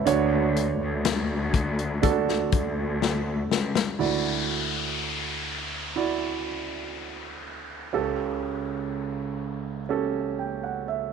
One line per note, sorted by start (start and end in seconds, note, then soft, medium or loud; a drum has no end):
0.00 0.29 B4 medium
0.00 0.28 E5 medium
0.06 0.76 D2 loud
0.06 1.50 D3 medium
0.06 1.93 D4 medium
0.06 1.93 F#4 medium
0.06 1.94 C#5 medium
0.06 closed hi-hat medium
0.56 closed hi-hat medium
0.80 2.48 D2 medium
1.05 snare loud
1.05 closed hi-hat medium
1.54 kick medium
1.54 closed hi-hat medium
1.79 closed hi-hat soft
2.02 3.89 D4 medium
2.02 3.90 F#4 medium
2.02 3.90 A4 medium
2.02 kick medium
2.02 closed hi-hat medium
2.29 snare soft
2.52 3.47 D2 medium
2.52 kick medium
2.52 closed hi-hat medium
3.02 snare medium
3.50 3.96 C#2 medium
3.50 snare medium
3.75 snare medium
3.99 7.89 D2 medium
3.99 7.89 D3 medium
3.99 5.86 E4 medium
3.99 5.87 F#4 medium
3.99 5.87 D5 medium
3.99 downlifter soft
5.96 7.83 E4 medium
5.96 7.83 F#4 medium
5.96 7.84 D5 medium
7.93 11.13 C#2 medium
7.93 11.13 C#3 medium
7.93 9.80 C#4 medium
7.93 9.80 G4 medium
7.93 9.81 A4 medium
9.89 11.13 C#4 medium
9.89 11.13 G4 medium
9.89 11.13 A4 medium
10.39 10.62 G5 soft
10.64 10.87 F#5 soft
10.88 11.11 E5 medium